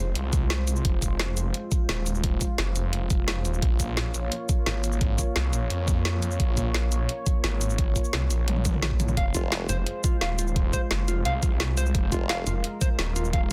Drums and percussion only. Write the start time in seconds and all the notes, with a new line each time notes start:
0.15 closed hi-hat
0.33 kick, closed hi-hat, cabasa
0.50 snare, closed hi-hat
0.67 closed hi-hat, cabasa
0.76 cabasa
0.85 kick, closed hi-hat
1.02 kick, closed hi-hat, cabasa
1.19 snare, closed hi-hat
1.37 closed hi-hat, cabasa
1.54 closed hi-hat
1.72 kick, closed hi-hat, cabasa
1.89 snare, closed hi-hat
2.06 closed hi-hat, cabasa
2.15 cabasa
2.24 kick, closed hi-hat
2.41 kick, closed hi-hat, cabasa
2.58 snare, closed hi-hat
2.76 closed hi-hat, cabasa
2.93 closed hi-hat
3.10 kick, closed hi-hat, cabasa
3.28 snare, closed hi-hat
3.45 closed hi-hat, cabasa
3.54 cabasa
3.62 kick, closed hi-hat
3.80 kick, closed hi-hat, cabasa
3.97 snare, closed hi-hat
4.14 closed hi-hat, cabasa
4.32 closed hi-hat
4.49 kick, closed hi-hat, cabasa
4.66 snare, closed hi-hat
4.84 closed hi-hat, cabasa
4.92 cabasa
5.01 kick, closed hi-hat
5.18 kick, closed hi-hat, cabasa
5.36 snare, closed hi-hat
5.53 closed hi-hat, cabasa
5.70 closed hi-hat
5.88 kick, closed hi-hat, cabasa
6.05 snare, closed hi-hat
6.22 closed hi-hat, cabasa
6.31 cabasa
6.40 kick, closed hi-hat
6.57 kick, closed hi-hat, cabasa
6.74 snare, closed hi-hat
6.92 closed hi-hat, cabasa
7.09 closed hi-hat
7.26 kick, closed hi-hat, cabasa
7.44 snare, closed hi-hat
7.61 closed hi-hat, cabasa
7.70 cabasa
7.78 kick, closed hi-hat
7.96 kick, closed hi-hat, cabasa
8.04 cabasa
8.13 snare, closed hi-hat
8.30 closed hi-hat, cabasa
8.48 closed hi-hat, high tom
8.56 high tom
8.65 kick, closed hi-hat, high tom, cabasa
8.74 mid tom
8.82 snare, closed hi-hat, mid tom
8.91 kick
9.00 closed hi-hat, mid tom, cabasa
9.08 mid tom, cabasa
9.17 kick, closed hi-hat
9.35 kick, closed hi-hat, cabasa
9.52 snare, closed hi-hat
9.69 closed hi-hat, cabasa
9.87 closed hi-hat
10.04 kick, closed hi-hat, cabasa
10.21 snare, closed hi-hat
10.39 closed hi-hat, cabasa
10.47 cabasa
10.56 kick, closed hi-hat
10.73 kick, closed hi-hat, cabasa
10.91 snare, closed hi-hat
11.08 closed hi-hat, cabasa
11.25 closed hi-hat
11.43 kick, closed hi-hat, cabasa
11.60 snare, closed hi-hat
11.77 closed hi-hat, cabasa
11.86 cabasa
11.95 kick, closed hi-hat
12.12 kick, closed hi-hat, cabasa
12.29 snare, closed hi-hat
12.47 closed hi-hat, cabasa
12.64 closed hi-hat
12.81 kick, closed hi-hat, cabasa
12.99 snare, closed hi-hat
13.16 closed hi-hat, cabasa
13.25 cabasa
13.33 kick, closed hi-hat